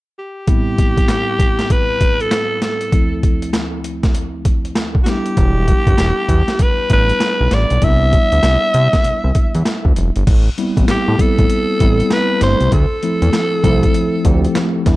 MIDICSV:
0, 0, Header, 1, 5, 480
1, 0, Start_track
1, 0, Key_signature, 0, "minor"
1, 0, Tempo, 612245
1, 372, Time_signature, 4, 2, 24, 8
1, 11731, End_track
2, 0, Start_track
2, 0, Title_t, "Alto saxophone"
2, 0, Program_c, 0, 65
2, 147, Note_on_c, 0, 67, 95
2, 1345, Note_on_c, 0, 71, 104
2, 1357, Note_off_c, 0, 67, 0
2, 1733, Note_on_c, 0, 69, 106
2, 1745, Note_off_c, 0, 71, 0
2, 2057, Note_off_c, 0, 69, 0
2, 2063, Note_on_c, 0, 69, 81
2, 2507, Note_off_c, 0, 69, 0
2, 3944, Note_on_c, 0, 66, 60
2, 3990, Note_on_c, 0, 67, 101
2, 4002, Note_off_c, 0, 66, 0
2, 5190, Note_on_c, 0, 71, 86
2, 5202, Note_off_c, 0, 67, 0
2, 5421, Note_off_c, 0, 71, 0
2, 5434, Note_on_c, 0, 71, 104
2, 5908, Note_on_c, 0, 74, 98
2, 5920, Note_off_c, 0, 71, 0
2, 6149, Note_on_c, 0, 76, 114
2, 6161, Note_off_c, 0, 74, 0
2, 7821, Note_off_c, 0, 76, 0
2, 8551, Note_on_c, 0, 67, 90
2, 8787, Note_on_c, 0, 69, 109
2, 8799, Note_off_c, 0, 67, 0
2, 9500, Note_off_c, 0, 69, 0
2, 9507, Note_on_c, 0, 71, 100
2, 9724, Note_off_c, 0, 71, 0
2, 9747, Note_on_c, 0, 72, 97
2, 9963, Note_off_c, 0, 72, 0
2, 9988, Note_on_c, 0, 69, 102
2, 11629, Note_off_c, 0, 69, 0
2, 11731, End_track
3, 0, Start_track
3, 0, Title_t, "Tine electric piano"
3, 0, Program_c, 1, 4
3, 369, Note_on_c, 1, 45, 69
3, 373, Note_on_c, 1, 55, 67
3, 378, Note_on_c, 1, 59, 65
3, 383, Note_on_c, 1, 60, 68
3, 387, Note_on_c, 1, 64, 87
3, 523, Control_c, 1, 64, 127
3, 2259, Note_off_c, 1, 45, 0
3, 2262, Note_off_c, 1, 55, 0
3, 2264, Note_off_c, 1, 59, 0
3, 2267, Note_off_c, 1, 60, 0
3, 2268, Note_off_c, 1, 64, 0
3, 2287, Note_on_c, 1, 38, 65
3, 2292, Note_on_c, 1, 53, 56
3, 2297, Note_on_c, 1, 57, 60
3, 2301, Control_c, 1, 64, 0
3, 2301, Note_on_c, 1, 60, 57
3, 2305, Note_on_c, 1, 64, 66
3, 2437, Control_c, 1, 64, 127
3, 3939, Note_off_c, 1, 38, 0
3, 3941, Note_off_c, 1, 53, 0
3, 3943, Note_off_c, 1, 57, 0
3, 3945, Note_off_c, 1, 60, 0
3, 3947, Note_off_c, 1, 64, 0
3, 3964, Note_on_c, 1, 55, 66
3, 3971, Note_on_c, 1, 59, 60
3, 3977, Note_on_c, 1, 62, 57
3, 3981, Control_c, 1, 64, 0
3, 3984, Note_on_c, 1, 64, 75
3, 4122, Control_c, 1, 64, 127
3, 5379, Note_off_c, 1, 55, 0
3, 5383, Note_off_c, 1, 59, 0
3, 5386, Note_off_c, 1, 62, 0
3, 5389, Note_off_c, 1, 64, 0
3, 5411, Note_on_c, 1, 55, 48
3, 5414, Note_on_c, 1, 59, 42
3, 5417, Note_on_c, 1, 62, 45
3, 5420, Note_on_c, 1, 64, 50
3, 6117, Note_off_c, 1, 55, 0
3, 6123, Note_off_c, 1, 59, 0
3, 6127, Note_on_c, 1, 55, 60
3, 6130, Note_off_c, 1, 62, 0
3, 6132, Note_on_c, 1, 59, 59
3, 6136, Note_off_c, 1, 64, 0
3, 6140, Note_on_c, 1, 62, 60
3, 6142, Control_c, 1, 64, 0
3, 6145, Note_on_c, 1, 64, 74
3, 6269, Control_c, 1, 64, 127
3, 8018, Note_off_c, 1, 55, 0
3, 8021, Note_off_c, 1, 59, 0
3, 8025, Note_off_c, 1, 62, 0
3, 8027, Note_off_c, 1, 64, 0
3, 8064, Control_c, 1, 64, 0
3, 8189, Control_c, 1, 64, 127
3, 8293, Note_on_c, 1, 55, 88
3, 8296, Note_on_c, 1, 59, 80
3, 8298, Note_on_c, 1, 60, 79
3, 8302, Note_on_c, 1, 64, 90
3, 8682, Note_off_c, 1, 55, 0
3, 8684, Note_off_c, 1, 59, 0
3, 8685, Note_off_c, 1, 60, 0
3, 8687, Note_off_c, 1, 64, 0
3, 8775, Note_on_c, 1, 55, 71
3, 8778, Note_on_c, 1, 59, 67
3, 8781, Note_on_c, 1, 60, 66
3, 8783, Note_on_c, 1, 64, 80
3, 9163, Note_off_c, 1, 55, 0
3, 9164, Note_off_c, 1, 59, 0
3, 9166, Note_off_c, 1, 60, 0
3, 9167, Note_off_c, 1, 64, 0
3, 9256, Note_on_c, 1, 55, 81
3, 9258, Note_on_c, 1, 59, 70
3, 9262, Note_on_c, 1, 60, 74
3, 9265, Note_on_c, 1, 64, 86
3, 9644, Note_off_c, 1, 55, 0
3, 9645, Note_off_c, 1, 59, 0
3, 9647, Note_off_c, 1, 60, 0
3, 9648, Note_off_c, 1, 64, 0
3, 9733, Note_on_c, 1, 55, 70
3, 9737, Note_on_c, 1, 57, 68
3, 9740, Note_on_c, 1, 60, 71
3, 9743, Note_on_c, 1, 64, 80
3, 9973, Note_off_c, 1, 55, 0
3, 9975, Note_off_c, 1, 57, 0
3, 9976, Note_off_c, 1, 60, 0
3, 9978, Note_off_c, 1, 64, 0
3, 9982, Control_c, 1, 64, 0
3, 10099, Control_c, 1, 64, 127
3, 10215, Note_on_c, 1, 53, 74
3, 10217, Note_on_c, 1, 57, 65
3, 10221, Note_on_c, 1, 60, 69
3, 10224, Note_on_c, 1, 64, 81
3, 10603, Note_off_c, 1, 53, 0
3, 10604, Note_off_c, 1, 57, 0
3, 10606, Note_off_c, 1, 60, 0
3, 10608, Note_off_c, 1, 64, 0
3, 10692, Note_on_c, 1, 53, 88
3, 10697, Note_on_c, 1, 57, 77
3, 10699, Note_on_c, 1, 60, 80
3, 10703, Note_on_c, 1, 64, 96
3, 11082, Note_off_c, 1, 53, 0
3, 11084, Note_off_c, 1, 57, 0
3, 11085, Note_off_c, 1, 60, 0
3, 11087, Note_off_c, 1, 64, 0
3, 11172, Note_on_c, 1, 53, 88
3, 11176, Note_on_c, 1, 57, 82
3, 11179, Note_on_c, 1, 60, 77
3, 11181, Note_on_c, 1, 67, 103
3, 11562, Note_off_c, 1, 53, 0
3, 11564, Note_off_c, 1, 57, 0
3, 11565, Note_off_c, 1, 60, 0
3, 11566, Note_off_c, 1, 67, 0
3, 11654, Note_on_c, 1, 55, 90
3, 11657, Note_on_c, 1, 59, 86
3, 11661, Note_on_c, 1, 62, 85
3, 11663, Note_on_c, 1, 64, 105
3, 11664, Control_c, 1, 64, 0
3, 11731, Note_off_c, 1, 55, 0
3, 11731, Note_off_c, 1, 59, 0
3, 11731, Note_off_c, 1, 62, 0
3, 11731, Note_off_c, 1, 64, 0
3, 11731, End_track
4, 0, Start_track
4, 0, Title_t, "Analog synth bass"
4, 0, Program_c, 2, 38
4, 4212, Note_on_c, 2, 28, 110
4, 4495, Note_off_c, 2, 28, 0
4, 4601, Note_on_c, 2, 31, 87
4, 4666, Note_off_c, 2, 31, 0
4, 4692, Note_on_c, 2, 28, 101
4, 4802, Note_off_c, 2, 28, 0
4, 4928, Note_on_c, 2, 40, 115
4, 5039, Note_off_c, 2, 40, 0
4, 5411, Note_on_c, 2, 33, 90
4, 5585, Note_off_c, 2, 33, 0
4, 5806, Note_on_c, 2, 35, 96
4, 5869, Note_off_c, 2, 35, 0
4, 5894, Note_on_c, 2, 33, 78
4, 6003, Note_off_c, 2, 33, 0
4, 6045, Note_on_c, 2, 35, 86
4, 6108, Note_off_c, 2, 35, 0
4, 6133, Note_on_c, 2, 36, 103
4, 6416, Note_off_c, 2, 36, 0
4, 6525, Note_on_c, 2, 38, 91
4, 6589, Note_off_c, 2, 38, 0
4, 6613, Note_on_c, 2, 36, 91
4, 6723, Note_off_c, 2, 36, 0
4, 6855, Note_on_c, 2, 48, 102
4, 6964, Note_off_c, 2, 48, 0
4, 7094, Note_on_c, 2, 36, 45
4, 7155, Note_off_c, 2, 36, 0
4, 7245, Note_on_c, 2, 36, 88
4, 7309, Note_off_c, 2, 36, 0
4, 7487, Note_on_c, 2, 40, 90
4, 7550, Note_off_c, 2, 40, 0
4, 7722, Note_on_c, 2, 38, 88
4, 7786, Note_off_c, 2, 38, 0
4, 7816, Note_on_c, 2, 29, 89
4, 7925, Note_off_c, 2, 29, 0
4, 7969, Note_on_c, 2, 31, 92
4, 8031, Note_off_c, 2, 31, 0
4, 8054, Note_on_c, 2, 33, 109
4, 8227, Note_off_c, 2, 33, 0
4, 8444, Note_on_c, 2, 33, 86
4, 8508, Note_off_c, 2, 33, 0
4, 8536, Note_on_c, 2, 45, 50
4, 8596, Note_off_c, 2, 45, 0
4, 8687, Note_on_c, 2, 45, 99
4, 8750, Note_off_c, 2, 45, 0
4, 8927, Note_on_c, 2, 33, 80
4, 8990, Note_off_c, 2, 33, 0
4, 9254, Note_on_c, 2, 33, 88
4, 9427, Note_off_c, 2, 33, 0
4, 9735, Note_on_c, 2, 31, 95
4, 9843, Note_off_c, 2, 31, 0
4, 9886, Note_on_c, 2, 36, 90
4, 9949, Note_off_c, 2, 36, 0
4, 9973, Note_on_c, 2, 38, 112
4, 10083, Note_off_c, 2, 38, 0
4, 10364, Note_on_c, 2, 40, 93
4, 10428, Note_off_c, 2, 40, 0
4, 10692, Note_on_c, 2, 36, 99
4, 10866, Note_off_c, 2, 36, 0
4, 11173, Note_on_c, 2, 38, 93
4, 11346, Note_off_c, 2, 38, 0
4, 11654, Note_on_c, 2, 40, 86
4, 11731, Note_off_c, 2, 40, 0
4, 11731, End_track
5, 0, Start_track
5, 0, Title_t, "Drums"
5, 372, Note_on_c, 9, 42, 65
5, 373, Note_on_c, 9, 36, 109
5, 451, Note_off_c, 9, 36, 0
5, 451, Note_off_c, 9, 42, 0
5, 615, Note_on_c, 9, 36, 79
5, 615, Note_on_c, 9, 42, 61
5, 693, Note_off_c, 9, 42, 0
5, 694, Note_off_c, 9, 36, 0
5, 763, Note_on_c, 9, 36, 86
5, 764, Note_on_c, 9, 42, 48
5, 841, Note_off_c, 9, 36, 0
5, 843, Note_off_c, 9, 42, 0
5, 850, Note_on_c, 9, 38, 91
5, 853, Note_on_c, 9, 42, 71
5, 928, Note_off_c, 9, 38, 0
5, 932, Note_off_c, 9, 42, 0
5, 1091, Note_on_c, 9, 36, 92
5, 1095, Note_on_c, 9, 42, 70
5, 1170, Note_off_c, 9, 36, 0
5, 1173, Note_off_c, 9, 42, 0
5, 1245, Note_on_c, 9, 38, 62
5, 1246, Note_on_c, 9, 42, 48
5, 1323, Note_off_c, 9, 38, 0
5, 1325, Note_off_c, 9, 42, 0
5, 1334, Note_on_c, 9, 36, 89
5, 1334, Note_on_c, 9, 42, 65
5, 1412, Note_off_c, 9, 36, 0
5, 1412, Note_off_c, 9, 42, 0
5, 1573, Note_on_c, 9, 36, 83
5, 1573, Note_on_c, 9, 42, 71
5, 1651, Note_off_c, 9, 42, 0
5, 1652, Note_off_c, 9, 36, 0
5, 1728, Note_on_c, 9, 42, 40
5, 1807, Note_off_c, 9, 42, 0
5, 1812, Note_on_c, 9, 38, 106
5, 1814, Note_on_c, 9, 42, 74
5, 1891, Note_off_c, 9, 38, 0
5, 1892, Note_off_c, 9, 42, 0
5, 2052, Note_on_c, 9, 38, 69
5, 2053, Note_on_c, 9, 42, 69
5, 2130, Note_off_c, 9, 38, 0
5, 2131, Note_off_c, 9, 42, 0
5, 2202, Note_on_c, 9, 42, 50
5, 2280, Note_off_c, 9, 42, 0
5, 2292, Note_on_c, 9, 36, 111
5, 2293, Note_on_c, 9, 42, 60
5, 2371, Note_off_c, 9, 36, 0
5, 2371, Note_off_c, 9, 42, 0
5, 2534, Note_on_c, 9, 36, 82
5, 2535, Note_on_c, 9, 42, 58
5, 2613, Note_off_c, 9, 36, 0
5, 2613, Note_off_c, 9, 42, 0
5, 2684, Note_on_c, 9, 42, 52
5, 2762, Note_off_c, 9, 42, 0
5, 2769, Note_on_c, 9, 38, 103
5, 2773, Note_on_c, 9, 42, 72
5, 2848, Note_off_c, 9, 38, 0
5, 2851, Note_off_c, 9, 42, 0
5, 3013, Note_on_c, 9, 42, 73
5, 3091, Note_off_c, 9, 42, 0
5, 3162, Note_on_c, 9, 38, 62
5, 3163, Note_on_c, 9, 42, 51
5, 3164, Note_on_c, 9, 36, 88
5, 3240, Note_off_c, 9, 38, 0
5, 3242, Note_off_c, 9, 36, 0
5, 3242, Note_off_c, 9, 42, 0
5, 3250, Note_on_c, 9, 42, 68
5, 3329, Note_off_c, 9, 42, 0
5, 3489, Note_on_c, 9, 42, 71
5, 3490, Note_on_c, 9, 36, 91
5, 3568, Note_off_c, 9, 42, 0
5, 3569, Note_off_c, 9, 36, 0
5, 3645, Note_on_c, 9, 42, 42
5, 3723, Note_off_c, 9, 42, 0
5, 3727, Note_on_c, 9, 38, 108
5, 3729, Note_on_c, 9, 42, 70
5, 3806, Note_off_c, 9, 38, 0
5, 3807, Note_off_c, 9, 42, 0
5, 3880, Note_on_c, 9, 36, 88
5, 3958, Note_off_c, 9, 36, 0
5, 3968, Note_on_c, 9, 38, 67
5, 3969, Note_on_c, 9, 42, 75
5, 4047, Note_off_c, 9, 38, 0
5, 4048, Note_off_c, 9, 42, 0
5, 4121, Note_on_c, 9, 42, 47
5, 4199, Note_off_c, 9, 42, 0
5, 4210, Note_on_c, 9, 36, 105
5, 4210, Note_on_c, 9, 42, 63
5, 4288, Note_off_c, 9, 42, 0
5, 4289, Note_off_c, 9, 36, 0
5, 4452, Note_on_c, 9, 36, 80
5, 4452, Note_on_c, 9, 42, 63
5, 4530, Note_off_c, 9, 42, 0
5, 4531, Note_off_c, 9, 36, 0
5, 4600, Note_on_c, 9, 36, 90
5, 4602, Note_on_c, 9, 42, 49
5, 4678, Note_off_c, 9, 36, 0
5, 4680, Note_off_c, 9, 42, 0
5, 4687, Note_on_c, 9, 38, 104
5, 4690, Note_on_c, 9, 42, 75
5, 4765, Note_off_c, 9, 38, 0
5, 4768, Note_off_c, 9, 42, 0
5, 4928, Note_on_c, 9, 36, 79
5, 4930, Note_on_c, 9, 42, 67
5, 5006, Note_off_c, 9, 36, 0
5, 5009, Note_off_c, 9, 42, 0
5, 5080, Note_on_c, 9, 38, 60
5, 5082, Note_on_c, 9, 42, 55
5, 5159, Note_off_c, 9, 38, 0
5, 5160, Note_off_c, 9, 42, 0
5, 5168, Note_on_c, 9, 42, 72
5, 5170, Note_on_c, 9, 36, 97
5, 5246, Note_off_c, 9, 42, 0
5, 5248, Note_off_c, 9, 36, 0
5, 5407, Note_on_c, 9, 42, 74
5, 5410, Note_on_c, 9, 36, 82
5, 5485, Note_off_c, 9, 42, 0
5, 5488, Note_off_c, 9, 36, 0
5, 5562, Note_on_c, 9, 42, 45
5, 5640, Note_off_c, 9, 42, 0
5, 5647, Note_on_c, 9, 38, 96
5, 5649, Note_on_c, 9, 42, 68
5, 5725, Note_off_c, 9, 38, 0
5, 5727, Note_off_c, 9, 42, 0
5, 5888, Note_on_c, 9, 38, 64
5, 5889, Note_on_c, 9, 42, 71
5, 5967, Note_off_c, 9, 38, 0
5, 5968, Note_off_c, 9, 42, 0
5, 6040, Note_on_c, 9, 42, 47
5, 6118, Note_off_c, 9, 42, 0
5, 6129, Note_on_c, 9, 42, 66
5, 6131, Note_on_c, 9, 36, 109
5, 6207, Note_off_c, 9, 42, 0
5, 6209, Note_off_c, 9, 36, 0
5, 6372, Note_on_c, 9, 42, 62
5, 6373, Note_on_c, 9, 36, 83
5, 6450, Note_off_c, 9, 42, 0
5, 6452, Note_off_c, 9, 36, 0
5, 6523, Note_on_c, 9, 42, 53
5, 6602, Note_off_c, 9, 42, 0
5, 6607, Note_on_c, 9, 38, 104
5, 6610, Note_on_c, 9, 42, 72
5, 6686, Note_off_c, 9, 38, 0
5, 6689, Note_off_c, 9, 42, 0
5, 6852, Note_on_c, 9, 42, 73
5, 6930, Note_off_c, 9, 42, 0
5, 7002, Note_on_c, 9, 38, 63
5, 7003, Note_on_c, 9, 42, 49
5, 7004, Note_on_c, 9, 36, 89
5, 7080, Note_off_c, 9, 38, 0
5, 7081, Note_off_c, 9, 42, 0
5, 7082, Note_off_c, 9, 36, 0
5, 7090, Note_on_c, 9, 42, 70
5, 7169, Note_off_c, 9, 42, 0
5, 7329, Note_on_c, 9, 42, 77
5, 7331, Note_on_c, 9, 36, 90
5, 7407, Note_off_c, 9, 42, 0
5, 7410, Note_off_c, 9, 36, 0
5, 7484, Note_on_c, 9, 42, 48
5, 7562, Note_off_c, 9, 42, 0
5, 7569, Note_on_c, 9, 38, 104
5, 7571, Note_on_c, 9, 42, 68
5, 7647, Note_off_c, 9, 38, 0
5, 7649, Note_off_c, 9, 42, 0
5, 7721, Note_on_c, 9, 36, 88
5, 7800, Note_off_c, 9, 36, 0
5, 7811, Note_on_c, 9, 42, 74
5, 7890, Note_off_c, 9, 42, 0
5, 7962, Note_on_c, 9, 42, 51
5, 8041, Note_off_c, 9, 42, 0
5, 8053, Note_on_c, 9, 36, 121
5, 8053, Note_on_c, 9, 42, 62
5, 8053, Note_on_c, 9, 49, 87
5, 8131, Note_off_c, 9, 36, 0
5, 8131, Note_off_c, 9, 42, 0
5, 8131, Note_off_c, 9, 49, 0
5, 8294, Note_on_c, 9, 42, 70
5, 8373, Note_off_c, 9, 42, 0
5, 8443, Note_on_c, 9, 36, 87
5, 8445, Note_on_c, 9, 42, 51
5, 8521, Note_off_c, 9, 36, 0
5, 8523, Note_off_c, 9, 42, 0
5, 8531, Note_on_c, 9, 38, 102
5, 8534, Note_on_c, 9, 42, 77
5, 8609, Note_off_c, 9, 38, 0
5, 8612, Note_off_c, 9, 42, 0
5, 8771, Note_on_c, 9, 36, 92
5, 8775, Note_on_c, 9, 42, 76
5, 8850, Note_off_c, 9, 36, 0
5, 8854, Note_off_c, 9, 42, 0
5, 8926, Note_on_c, 9, 36, 94
5, 8926, Note_on_c, 9, 42, 49
5, 9004, Note_off_c, 9, 36, 0
5, 9004, Note_off_c, 9, 42, 0
5, 9013, Note_on_c, 9, 42, 74
5, 9091, Note_off_c, 9, 42, 0
5, 9253, Note_on_c, 9, 36, 84
5, 9253, Note_on_c, 9, 42, 75
5, 9331, Note_off_c, 9, 36, 0
5, 9331, Note_off_c, 9, 42, 0
5, 9407, Note_on_c, 9, 42, 45
5, 9485, Note_off_c, 9, 42, 0
5, 9490, Note_on_c, 9, 38, 104
5, 9491, Note_on_c, 9, 42, 72
5, 9568, Note_off_c, 9, 38, 0
5, 9570, Note_off_c, 9, 42, 0
5, 9729, Note_on_c, 9, 38, 67
5, 9730, Note_on_c, 9, 42, 73
5, 9808, Note_off_c, 9, 38, 0
5, 9809, Note_off_c, 9, 42, 0
5, 9882, Note_on_c, 9, 42, 53
5, 9960, Note_off_c, 9, 42, 0
5, 9971, Note_on_c, 9, 42, 66
5, 9972, Note_on_c, 9, 36, 108
5, 10050, Note_off_c, 9, 42, 0
5, 10051, Note_off_c, 9, 36, 0
5, 10213, Note_on_c, 9, 42, 65
5, 10291, Note_off_c, 9, 42, 0
5, 10365, Note_on_c, 9, 42, 52
5, 10443, Note_off_c, 9, 42, 0
5, 10450, Note_on_c, 9, 38, 105
5, 10454, Note_on_c, 9, 42, 77
5, 10529, Note_off_c, 9, 38, 0
5, 10532, Note_off_c, 9, 42, 0
5, 10691, Note_on_c, 9, 36, 86
5, 10694, Note_on_c, 9, 42, 71
5, 10769, Note_off_c, 9, 36, 0
5, 10772, Note_off_c, 9, 42, 0
5, 10844, Note_on_c, 9, 42, 52
5, 10845, Note_on_c, 9, 36, 90
5, 10922, Note_off_c, 9, 42, 0
5, 10924, Note_off_c, 9, 36, 0
5, 10932, Note_on_c, 9, 42, 70
5, 11011, Note_off_c, 9, 42, 0
5, 11170, Note_on_c, 9, 42, 78
5, 11172, Note_on_c, 9, 36, 82
5, 11248, Note_off_c, 9, 42, 0
5, 11250, Note_off_c, 9, 36, 0
5, 11325, Note_on_c, 9, 42, 44
5, 11404, Note_off_c, 9, 42, 0
5, 11409, Note_on_c, 9, 38, 104
5, 11410, Note_on_c, 9, 42, 71
5, 11487, Note_off_c, 9, 38, 0
5, 11489, Note_off_c, 9, 42, 0
5, 11650, Note_on_c, 9, 38, 66
5, 11651, Note_on_c, 9, 42, 71
5, 11652, Note_on_c, 9, 36, 106
5, 11728, Note_off_c, 9, 38, 0
5, 11729, Note_off_c, 9, 42, 0
5, 11730, Note_off_c, 9, 36, 0
5, 11731, End_track
0, 0, End_of_file